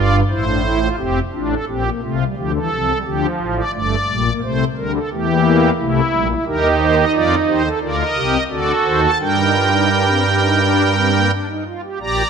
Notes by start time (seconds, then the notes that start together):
Already playing: G1 G2 F4 D5
0.29 A1 A2 E4 C5
0.47 D4
0.64 E4
0.80 F4
0.97 F1 F2 C4 G4
1.33 A1 A2 D4 F4
1.50 A4
1.68 A#1 A#2 C4 G4
1.85 A#3
2.02 C2 C3 A3 F4
2.20 G3
2.37 D2 D3 F3 G4
2.54 E3 A4
2.71 C2 C3 F3
2.88 G3
3.05 D2 D3 F3 G4
3.39 A1 A2 F4
3.56 D5
3.73 G1 G2 A3 D5
4.08 A#1 A#2 G3
4.25 A#3
4.43 C2 C3 A3 C5
4.77 D2 D3 G3 A#4
4.95 A4
5.11 E2 E3 A3 G4
5.28 A#3
5.79 C2 C3 A3 E4
6.13 A#1 A#2 G3
6.29 E4
6.46 D#2 D#3 D#4 G4 A#4
6.79 C5
6.97 D#5
7.14 F2 F3 F4 D5
7.47 D#2 D#3 G4 C5
7.64 A4
7.81 D2 D3 F4 A#4 D5
7.99 D#5
8.15 C2 C3 G4
8.50 D2 D3 F#4 A4 D5
8.85 D#2 D#3 C5
9.03 A5
9.20 G2 G3 D4 A#4 G5
9.38 D#4
9.56 F4
9.73 D#4
9.91 D4
10.09 C4
10.26 D4
10.44 D#4
10.61 D4
10.96 C4
11.14 A#3
11.31 D4
11.49 D#4
11.66 F4
11.84 G4
12.01 A#1 A#2 G4 D5 A#5